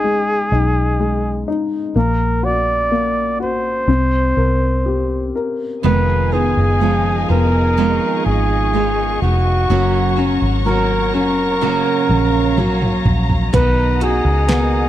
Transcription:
0.00 0.48 G#1 medium
0.00 0.04 G#3 medium
0.00 0.52 D#4 soft
0.00 1.44 G#4 loud
0.04 0.98 G#3 soft
0.52 1.44 B1 medium
0.52 1.46 D#4 soft
1.00 1.93 G#3 soft
1.48 1.94 D#4 soft
1.96 3.84 A#1 medium
1.96 2.90 A#3 medium
1.96 2.46 A#4 medium
2.43 3.38 F#4 soft
2.43 3.40 D5 medium
2.91 3.85 A#3 soft
3.40 3.87 F#4 soft
3.40 5.32 C5 medium
3.88 4.33 C2 medium
3.88 5.80 C4 medium
4.37 5.31 C2 medium
4.37 5.34 A#4 soft
4.86 5.81 G4 soft
5.36 5.83 A#4 soft
5.83 6.53 F1 medium
5.83 6.32 F2 medium
5.83 6.32 D#3 medium
5.83 9.67 D#3 medium
5.83 6.33 G#3 medium
5.83 6.33 B3 medium
5.83 6.32 D#4 medium
5.83 6.31 F4 medium
5.83 9.66 G#4 medium
5.83 6.35 B4 loud
5.83 9.66 D#5 medium
5.83 9.66 F5 medium
5.83 7.76 G#5 medium
6.32 6.79 G#3 soft
6.32 7.29 B3 soft
6.32 6.80 B3 soft
6.32 6.81 D#4 soft
6.32 6.81 F4 soft
6.32 7.30 G#4 medium
6.57 7.26 F#1 medium
6.80 8.70 F3 soft
6.80 7.29 G#3 soft
6.80 7.29 B3 medium
6.80 7.28 D#4 medium
6.80 7.27 F4 medium
7.28 7.98 F1 medium
7.28 7.77 G#3 soft
7.28 7.77 B3 soft
7.28 9.19 B3 soft
7.28 7.78 D#4 soft
7.28 7.77 F4 soft
7.28 8.22 A#4 medium
7.77 8.74 F2 medium
7.77 8.74 D#3 medium
7.77 8.72 G#3 medium
7.77 8.73 B3 medium
7.77 8.74 D#4 medium
7.77 8.75 F4 medium
7.77 13.50 C#6 medium
8.26 9.18 G#1 medium
8.26 9.18 G#4 medium
8.73 9.22 G#3 medium
8.73 9.68 G#3 soft
8.73 9.22 B3 medium
8.73 9.21 D#4 medium
8.73 9.23 F4 medium
9.22 9.67 F1 medium
9.22 9.70 G#3 soft
9.22 9.70 B3 soft
9.22 9.70 D#4 soft
9.22 10.35 F#4 medium
9.69 10.38 F#1 medium
9.69 10.18 F#2 medium
9.69 10.18 C#3 medium
9.69 10.65 F#3 medium
9.69 10.18 F#3 medium
9.69 10.18 A#3 medium
9.69 10.17 C#4 medium
9.69 10.15 F#4 medium
9.69 13.49 C#5 medium
9.69 11.60 F#5 medium
9.69 14.89 A#5 medium
10.17 10.64 F#3 soft
10.17 10.65 A#3 soft
10.17 10.66 C#4 soft
10.17 11.13 C#4 soft
10.17 10.65 F#4 medium
10.42 11.14 G#1 medium
10.65 11.14 F#3 medium
10.65 12.54 F#3 medium
10.65 11.14 A#3 medium
10.65 11.13 C#4 medium
10.65 11.12 F#4 medium
10.65 11.11 A#4 medium
11.13 11.82 F#1 medium
11.13 11.61 F#3 soft
11.13 11.61 A#3 soft
11.13 11.62 C#4 soft
11.13 13.02 C#4 soft
11.13 11.62 F#4 soft
11.13 13.02 A#4 medium
11.61 12.57 F#2 medium
11.61 12.58 C#3 medium
11.61 12.57 F#3 medium
11.61 12.58 A#3 medium
11.61 12.58 C#4 medium
11.61 12.59 F#4 medium
11.61 13.51 F5 medium
11.61 high tom soft
12.09 13.01 A#1 medium
12.09 mid tom medium
12.57 13.52 F#3 medium
12.57 13.50 F#3 medium
12.57 13.56 A#3 medium
12.57 13.54 C#4 medium
12.57 13.54 F#4 medium
12.57 mid tom medium
12.82 mid tom medium
13.05 13.50 A#1 medium
13.05 floor tom medium
13.30 floor tom medium
13.53 14.21 B1 medium
13.53 14.01 B2 medium
13.53 14.01 D#3 medium
13.53 14.47 B3 medium
13.53 14.01 D#4 medium
13.53 13.99 F#4 medium
13.53 14.05 B4 medium
13.53 14.89 D#5 medium
13.53 14.89 F#5 medium
13.53 kick loud
13.53 closed hi-hat medium
14.00 14.48 A#3 soft
14.00 14.49 D#4 soft
14.00 14.49 F#4 soft
14.00 14.89 F#4 medium
14.00 14.89 G#4 medium
14.00 closed hi-hat medium
14.25 14.89 C#2 medium
14.48 14.89 D#3 medium
14.48 14.89 A#3 medium
14.48 14.89 B3 medium
14.48 14.89 D#4 medium
14.48 14.89 F#4 medium
14.48 snare loud
14.48 closed hi-hat medium

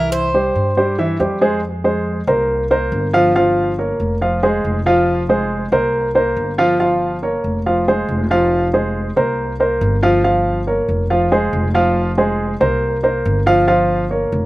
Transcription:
0.00 0.49 C2 medium
0.00 0.26 E3 medium
0.00 0.26 E4 medium
0.00 0.11 A#4 medium
0.00 0.27 E5 medium
0.12 0.94 C5 medium
0.34 0.69 G3 medium
0.34 0.69 G4 medium
0.34 0.70 C5 medium
0.55 1.16 G2 medium
0.77 0.95 G3 medium
0.77 0.95 G4 medium
0.77 0.95 C5 medium
0.99 1.16 E3 medium
0.99 1.16 E4 medium
0.99 1.16 E5 medium
1.20 2.21 F2 medium
1.20 1.37 G3 medium
1.20 1.38 G4 medium
1.20 1.38 C5 medium
1.41 1.59 G#3 medium
1.41 1.59 G#4 medium
1.41 1.59 C5 medium
1.84 2.20 G#3 medium
1.84 2.20 G#4 medium
1.84 2.20 C5 medium
2.27 2.88 C2 medium
2.27 2.63 A#3 medium
2.27 2.63 A#4 medium
2.27 2.63 C5 medium
2.71 3.06 A#3 medium
2.71 3.06 A#4 medium
2.71 3.06 C5 medium
2.92 3.94 G1 medium
3.13 3.31 F3 loud
3.13 3.31 F4 medium
3.13 3.32 F5 loud
3.35 3.71 F3 medium
3.35 3.71 F4 medium
3.35 3.71 F5 medium
3.78 4.14 A#3 medium
3.78 4.14 A#4 medium
3.78 4.14 C#5 medium
4.00 4.60 F1 medium
4.21 4.39 F3 medium
4.21 4.39 F4 medium
4.21 4.39 F5 medium
4.43 4.78 G#3 medium
4.43 4.78 G#4 medium
4.43 4.79 C5 medium
4.64 5.66 F1 medium
4.86 5.21 F3 medium
4.86 5.22 F4 medium
4.86 5.22 F5 medium
5.29 5.64 G#3 medium
5.29 5.65 G#4 medium
5.29 5.65 C5 medium
5.72 6.33 C2 medium
5.72 6.07 A#3 medium
5.72 6.08 A#4 medium
5.72 6.08 C5 medium
6.15 6.50 A#3 medium
6.15 6.50 A#4 medium
6.15 6.51 C5 medium
6.36 7.38 G1 medium
6.58 6.76 F3 loud
6.58 6.76 F4 loud
6.58 6.76 F5 loud
6.80 7.15 F3 medium
6.80 7.15 F4 medium
6.80 7.15 F5 medium
7.23 7.58 A#3 medium
7.23 7.58 A#4 medium
7.23 7.58 C#5 medium
7.44 8.05 F1 medium
7.66 7.84 F3 medium
7.66 7.84 F4 medium
7.66 7.84 F5 medium
7.88 8.23 G#3 medium
7.88 8.23 G#4 medium
7.88 8.23 C5 medium
8.09 9.10 F1 medium
8.31 8.66 F3 medium
8.31 8.66 F4 medium
8.31 8.66 F5 loud
8.73 9.09 G#3 medium
8.73 9.09 G#4 medium
8.73 9.09 C5 medium
9.16 9.77 C2 medium
9.16 9.52 A#3 medium
9.16 9.52 A#4 medium
9.16 9.52 C5 medium
9.60 9.95 A#3 medium
9.60 9.95 A#4 medium
9.60 9.95 C5 medium
9.81 10.82 G1 loud
10.03 10.20 F3 loud
10.03 10.20 F4 medium
10.03 10.21 F5 medium
10.24 10.59 F3 medium
10.24 10.59 F4 medium
10.24 10.60 F5 medium
10.67 11.02 A#3 medium
10.67 11.02 A#4 medium
10.67 11.03 C#5 medium
10.88 11.49 F1 medium
11.10 11.28 F3 medium
11.10 11.28 F4 medium
11.10 11.28 F5 medium
11.32 11.67 G#3 medium
11.32 11.67 G#4 medium
11.32 11.67 C5 medium
11.53 12.54 F1 medium
11.74 12.10 F3 loud
11.74 12.10 F4 medium
11.74 12.10 F5 medium
12.18 12.53 G#3 medium
12.18 12.53 G#4 medium
12.18 12.53 C5 medium
12.60 13.21 C2 medium
12.60 12.96 A#3 medium
12.60 12.96 A#4 medium
12.60 12.96 C5 medium
13.03 13.38 A#3 medium
13.03 13.39 A#4 medium
13.03 13.39 C5 medium
13.25 14.26 G1 loud
13.46 13.64 F3 medium
13.46 13.64 F4 medium
13.46 13.64 F5 loud
13.67 14.03 F3 medium
13.67 14.03 F4 medium
13.67 14.03 F5 medium
14.10 14.46 A#3 medium
14.10 14.46 A#4 medium
14.10 14.46 C#5 medium
14.32 14.46 F1 medium

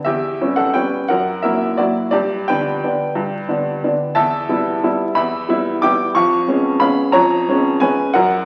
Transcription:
0.04 0.40 E2 medium
0.04 0.54 G4 medium
0.04 0.57 E5 loud
0.41 0.72 G3 medium
0.41 0.72 B3 medium
0.41 0.72 C#4 medium
0.56 0.74 A4 medium
0.56 0.74 F#5 loud
0.74 1.06 G3 medium
0.74 1.06 B3 medium
0.74 1.07 C#4 medium
0.74 1.07 B4 medium
0.74 1.09 G5 loud
1.08 1.43 F#2 medium
1.08 1.41 A#4 medium
1.08 1.43 F#5 loud
1.42 1.75 F#3 medium
1.42 1.75 A#3 medium
1.42 1.76 E4 medium
1.42 1.76 A#4 medium
1.42 1.78 E5 loud
1.77 2.09 F#3 medium
1.77 2.09 A#3 medium
1.77 2.09 E4 medium
1.77 2.10 F#4 medium
1.77 2.09 D5 medium
2.11 2.47 G2 medium
2.11 2.46 G4 medium
2.11 2.48 D5 loud
2.48 2.80 D3 medium
2.48 2.80 B3 medium
2.48 2.80 D4 medium
2.48 4.12 B4 medium
2.48 4.16 G5 loud
2.84 3.13 D3 medium
2.84 3.13 B3 medium
2.84 3.13 D4 medium
3.15 3.47 G2 medium
3.48 3.80 D3 medium
3.48 3.80 B3 medium
3.48 3.80 D4 medium
3.84 4.13 D3 medium
3.84 4.13 B3 medium
3.84 4.13 D4 medium
4.15 4.49 E2 medium
4.15 5.13 E5 loud
4.15 5.16 A5 loud
4.49 4.80 G3 medium
4.49 4.80 B3 medium
4.49 4.80 E4 medium
4.84 5.14 G3 medium
4.84 5.14 B3 medium
4.84 5.14 E4 medium
5.15 5.48 E2 medium
5.15 5.79 E5 medium
5.15 5.83 B5 loud
5.49 5.80 G3 medium
5.49 5.80 B3 medium
5.49 5.80 E4 medium
5.82 6.14 G3 medium
5.82 6.14 B3 medium
5.82 6.14 E4 medium
5.82 6.14 G5 loud
5.82 6.16 D6 loud
6.15 6.47 F2 medium
6.15 6.77 F5 medium
6.15 6.81 C#6 loud
6.48 6.78 G#3 medium
6.48 6.78 B3 medium
6.48 6.78 C#4 medium
6.80 7.11 G#3 medium
6.80 7.11 B3 medium
6.80 7.12 C#4 medium
6.80 7.12 F5 medium
6.80 7.14 B5 loud
7.12 7.47 F2 loud
7.12 7.78 C#5 loud
7.12 7.81 A#5 loud
7.48 7.79 G#3 medium
7.48 7.79 B3 medium
7.48 7.79 C#4 medium
7.80 8.12 G#3 medium
7.80 8.12 B3 medium
7.80 8.12 C#4 medium
7.80 8.13 B4 medium
7.80 8.15 G#5 loud
8.14 8.45 F#2 loud
8.14 8.45 A#4 medium
8.14 8.45 F#5 loud

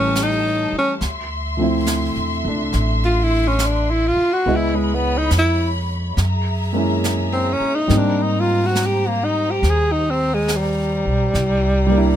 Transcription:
0.00 0.67 A1 medium
0.00 1.01 E3 medium
0.00 1.00 G3 soft
0.00 1.00 A3 soft
0.00 0.25 C#4 medium
0.00 1.01 C#4 soft
0.00 0.98 G4 medium
0.00 0.98 C#5 medium
0.00 0.98 A5 medium
0.15 snare soft
0.15 hi-hat pedal medium
0.23 0.76 D#4 medium
0.72 muted upright bass stroke soft
0.79 0.94 C#4 medium
0.99 2.12 D2 medium
0.99 4.41 E5 medium
0.99 4.41 C6 medium
0.99 brush sweep soft
0.99 snare soft
1.57 4.45 F3 soft
1.57 2.43 A3 soft
1.57 4.46 C4 soft
1.62 4.46 E4 soft
1.86 snare soft
1.86 hi-hat pedal medium
2.16 2.42 E2 medium
2.45 2.71 C#2 medium
2.45 4.45 A3 soft
2.45 4.47 D4 soft
2.73 4.12 A1 medium
2.73 brush sweep soft
2.73 snare soft
3.05 3.24 F4 medium
3.23 3.49 E4 medium
3.48 3.68 C#4 medium
3.59 snare soft
3.59 hi-hat pedal soft
3.66 3.92 D4 medium
3.91 4.09 E4 medium
4.08 4.34 F4 medium
4.17 muted upright bass stroke soft
4.33 4.57 F#4 medium
4.44 5.28 C#2 medium
4.44 6.18 G#3 soft
4.44 6.18 B3 soft
4.44 6.19 E4 medium
4.44 6.15 C#5 medium
4.44 6.19 D#5 soft
4.44 6.15 B5 medium
4.44 brush sweep soft
4.56 4.77 E4 medium
4.76 4.96 G#3 medium
4.94 5.20 B3 medium
5.18 5.32 D#4 medium
5.31 6.13 F2 medium
5.31 snare soft
5.31 hi-hat pedal soft
5.38 5.70 E4 medium
6.17 7.57 F#2 medium
6.17 7.89 G#4 medium
6.17 7.89 E5 medium
6.17 11.32 A#5 medium
6.17 brush sweep soft
6.17 snare soft
6.73 7.90 G#3 soft
6.73 7.88 A#3 soft
6.73 7.91 C#4 soft
6.77 7.92 E4 soft
7.04 snare soft
7.04 hi-hat pedal soft
7.33 7.54 C4 medium
7.52 7.77 C#4 medium
7.60 muted upright bass stroke soft
7.75 7.99 D#4 medium
7.88 9.59 G#2 medium
7.88 11.34 G3 soft
7.88 11.35 A#3 soft
7.88 11.36 C4 soft
7.88 11.32 G4 medium
7.88 11.32 C5 medium
7.88 brush sweep soft
7.88 snare soft
7.92 11.37 D#4 soft
7.98 8.24 D4 medium
8.23 8.42 D#4 medium
8.40 8.67 F4 medium
8.66 8.88 F#4 medium
8.75 snare soft
8.75 hi-hat pedal soft
8.86 9.09 G4 medium
9.08 9.26 A#3 medium
9.25 9.52 D#4 medium
9.51 9.71 G4 medium
9.62 11.02 D#2 medium
9.62 brush sweep soft
9.62 snare soft
9.70 9.94 G#4 medium
9.92 10.12 D#4 medium
10.10 10.36 C4 medium
10.34 10.58 G#3 medium
10.48 snare soft
10.48 hi-hat pedal medium
10.56 12.16 G3 medium
11.05 11.33 B1 medium
11.34 12.16 C2 medium
11.34 12.16 E4 medium
11.34 12.16 D5 medium
11.34 12.16 A#5 medium
11.34 brush sweep soft
11.34 snare soft
11.87 12.16 G3 soft
11.91 12.16 A#3 soft
11.91 12.16 D4 soft
11.97 12.16 E4 medium

